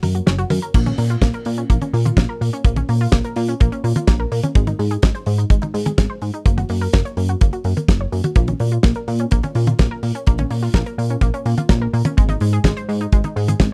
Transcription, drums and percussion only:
0.03 open hi-hat, high tom
0.15 closed hi-hat
0.27 snare, closed hi-hat
0.39 closed hi-hat
0.50 open hi-hat, high tom
0.62 closed hi-hat
0.74 kick, closed hi-hat, crash
0.86 closed hi-hat, high tom
0.98 open hi-hat
1.10 closed hi-hat
1.22 kick, snare, closed hi-hat
1.33 closed hi-hat
1.45 open hi-hat
1.56 closed hi-hat
1.70 kick, closed hi-hat
1.82 closed hi-hat, high tom
1.94 open hi-hat
2.06 closed hi-hat, high tom
2.17 kick, snare, closed hi-hat
2.42 open hi-hat
2.54 closed hi-hat
2.65 kick, closed hi-hat
2.76 closed hi-hat, high tom
2.89 open hi-hat
3.00 open hi-hat
3.12 kick, snare, closed hi-hat
3.24 closed hi-hat
3.36 open hi-hat
3.49 closed hi-hat
3.60 kick, closed hi-hat
3.72 closed hi-hat
3.84 open hi-hat
3.96 closed hi-hat, high tom
4.08 kick, snare, closed hi-hat
4.32 open hi-hat
4.43 closed hi-hat, high tom
4.55 kick, closed hi-hat
4.67 closed hi-hat, high tom
4.79 open hi-hat
4.91 closed hi-hat
5.02 kick, snare, closed hi-hat
5.15 closed hi-hat
5.26 open hi-hat
5.39 closed hi-hat
5.50 kick, closed hi-hat
5.62 closed hi-hat, high tom
5.74 open hi-hat
5.85 closed hi-hat, high tom
5.98 kick, snare, closed hi-hat
6.22 open hi-hat
6.34 closed hi-hat
6.46 kick, closed hi-hat
6.58 closed hi-hat, high tom
6.69 open hi-hat
6.82 open hi-hat
6.93 kick, snare, closed hi-hat
7.05 closed hi-hat
7.17 open hi-hat
7.28 closed hi-hat
7.41 kick, closed hi-hat
7.53 closed hi-hat
7.64 open hi-hat
7.77 closed hi-hat, high tom
7.88 kick, snare, closed hi-hat
8.12 open hi-hat
8.24 closed hi-hat, high tom
8.36 kick, closed hi-hat
8.48 closed hi-hat, high tom
8.60 open hi-hat
8.71 closed hi-hat
8.83 kick, snare, closed hi-hat
8.95 closed hi-hat
9.08 open hi-hat
9.19 closed hi-hat
9.31 kick, closed hi-hat
9.43 closed hi-hat, high tom
9.55 open hi-hat
9.67 closed hi-hat, high tom
9.79 kick, snare, closed hi-hat
10.03 open hi-hat
10.15 closed hi-hat
10.27 kick, closed hi-hat
10.38 closed hi-hat, high tom
10.50 open hi-hat
10.63 open hi-hat
10.74 kick, snare, closed hi-hat
10.86 closed hi-hat
10.99 open hi-hat
11.10 closed hi-hat
11.21 kick, closed hi-hat
11.34 closed hi-hat
11.46 open hi-hat
11.57 closed hi-hat, high tom
11.69 kick, snare, closed hi-hat
11.94 open hi-hat
12.05 closed hi-hat, high tom
12.18 kick, closed hi-hat
12.29 closed hi-hat, high tom
12.40 open hi-hat
12.53 closed hi-hat
12.64 kick, snare, closed hi-hat
12.77 closed hi-hat
12.89 open hi-hat
13.01 closed hi-hat
13.12 kick, closed hi-hat
13.24 closed hi-hat, high tom
13.37 open hi-hat
13.48 closed hi-hat, high tom
13.60 kick, snare, closed hi-hat

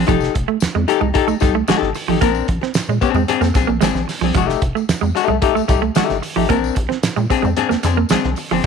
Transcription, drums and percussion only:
0.07 kick, closed hi-hat, tambourine, muted conga
0.20 snare, tambourine
0.35 kick, closed hi-hat, muted conga
0.60 snare, closed hi-hat, tambourine, high conga
0.88 closed hi-hat, tambourine
1.01 low conga
1.15 kick, closed hi-hat, muted conga
1.28 tambourine
1.40 kick, snare, closed hi-hat, tambourine, muted conga, low conga
1.68 snare, closed hi-hat, tambourine, high conga
1.82 snare, high conga
1.95 open hi-hat, tambourine
2.21 kick, closed hi-hat, tambourine, muted conga
2.35 tambourine
2.48 kick, closed hi-hat, muted conga
2.62 snare
2.74 snare, closed hi-hat, tambourine, high conga
2.87 tambourine
3.01 kick, closed hi-hat, tambourine
3.14 tambourine, low conga
3.28 closed hi-hat, muted conga, low conga
3.41 snare, tambourine
3.54 kick, snare, closed hi-hat, tambourine, muted conga
3.81 snare, closed hi-hat, tambourine, high conga
3.95 snare, tambourine, high conga
4.09 snare, open hi-hat, tambourine
4.34 kick, closed hi-hat, tambourine, muted conga
4.49 snare, tambourine
4.62 kick, closed hi-hat, muted conga
4.77 tambourine
4.89 snare, closed hi-hat, tambourine, high conga
5.03 tambourine
5.17 closed hi-hat, tambourine
5.28 low conga
5.42 kick, closed hi-hat, muted conga
5.57 tambourine
5.68 kick, snare, closed hi-hat, tambourine, muted conga, low conga
5.95 snare, closed hi-hat, tambourine, high conga
6.09 snare, tambourine, high conga
6.23 open hi-hat, tambourine
6.49 kick, closed hi-hat, tambourine, muted conga
6.64 tambourine
6.76 kick, closed hi-hat
6.91 snare
7.03 snare, closed hi-hat, tambourine, high conga
7.17 tambourine
7.30 kick, closed hi-hat, tambourine
7.43 tambourine, low conga
7.57 closed hi-hat, muted conga, low conga
7.71 snare, tambourine
7.83 snare, closed hi-hat, tambourine, muted conga
8.09 snare, closed hi-hat, tambourine, high conga
8.24 snare, high conga
8.36 open hi-hat, tambourine

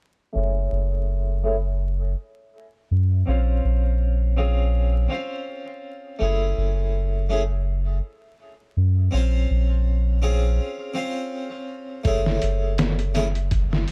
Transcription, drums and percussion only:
12.05 kick, closed hi-hat
12.26 snare
12.42 closed hi-hat
12.78 snare, closed hi-hat
12.99 closed hi-hat
13.15 snare, closed hi-hat
13.35 closed hi-hat
13.51 kick, closed hi-hat
13.73 snare
13.88 closed hi-hat

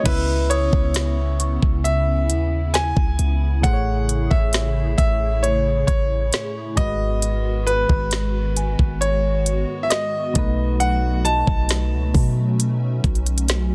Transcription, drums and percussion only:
0.06 kick, closed hi-hat, crash
0.51 closed hi-hat
0.73 kick
0.94 snare, closed hi-hat
1.40 closed hi-hat
1.63 kick
1.85 closed hi-hat
2.30 closed hi-hat
2.74 snare, closed hi-hat
2.97 kick
3.19 closed hi-hat
3.64 kick, closed hi-hat
4.09 closed hi-hat
4.31 kick
4.53 snare, closed hi-hat
4.98 kick, closed hi-hat
5.44 closed hi-hat
5.88 kick, closed hi-hat
6.33 snare, closed hi-hat
6.77 kick, closed hi-hat
7.22 closed hi-hat
7.67 closed hi-hat
7.89 kick
8.11 snare, closed hi-hat
8.57 closed hi-hat
8.79 kick
9.02 closed hi-hat
9.46 closed hi-hat
9.91 snare, closed hi-hat
10.35 kick, closed hi-hat
10.80 closed hi-hat
11.25 closed hi-hat
11.47 kick
11.69 snare, closed hi-hat
12.14 kick, open hi-hat
12.60 closed hi-hat
13.04 kick, closed hi-hat
13.15 closed hi-hat
13.26 closed hi-hat
13.38 closed hi-hat
13.48 snare, closed hi-hat

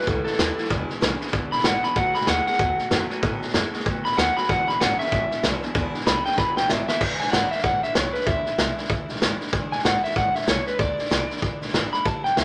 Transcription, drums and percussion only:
0.01 snare
0.07 kick, snare
0.26 snare
0.33 snare
0.39 snare, hi-hat pedal
0.58 snare
0.64 snare
0.70 kick, snare
0.90 snare
1.02 snare, hi-hat pedal
1.21 snare
1.27 snare
1.33 kick, snare
1.52 snare
1.58 snare
1.64 snare, hi-hat pedal
1.83 snare
1.96 kick, snare
2.14 snare
2.21 snare
2.27 snare, hi-hat pedal
2.47 snare
2.53 snare
2.59 kick, snare
2.79 snare
2.91 snare, hi-hat pedal
3.10 snare
3.23 kick, snare
3.42 snare
3.48 snare
3.54 snare, hi-hat pedal
3.73 snare
3.80 snare
3.86 kick, snare
4.05 snare
4.12 snare
4.18 snare, hi-hat pedal
4.37 snare
4.44 snare
4.49 kick, snare
4.69 snare
4.81 snare, hi-hat pedal
5.00 snare
5.06 snare
5.12 kick, snare
5.31 snare
5.43 snare, hi-hat pedal
5.63 snare
5.75 kick, snare
5.94 snare
6.00 snare
6.07 snare, hi-hat pedal
6.25 snare
6.32 snare
6.38 kick, snare
6.57 snare
6.69 snare, hi-hat pedal
6.88 snare
7.01 kick, snare, crash
7.20 snare
7.27 snare
7.33 snare, hi-hat pedal
7.52 snare
7.58 snare
7.64 kick, snare
7.83 snare
7.95 snare, hi-hat pedal
8.14 snare
8.21 snare
8.27 kick, snare
8.46 snare
8.58 snare, hi-hat pedal
8.78 snare
8.84 snare
8.90 kick, snare
9.09 snare
9.15 snare
9.22 snare, hi-hat pedal
9.41 snare
9.47 snare
9.53 kick, snare
9.72 snare
9.79 snare
9.85 snare, hi-hat pedal
10.04 snare
10.10 snare
10.16 kick, snare
10.35 snare
10.41 snare
10.47 snare, hi-hat pedal
10.67 snare
10.79 kick, snare
10.99 snare
11.05 snare
11.11 snare, hi-hat pedal
11.30 snare
11.37 snare
11.42 kick, snare
11.62 snare
11.68 snare
11.74 snare, hi-hat pedal
11.93 snare
12.05 kick, snare
12.25 snare
12.37 snare, hi-hat pedal

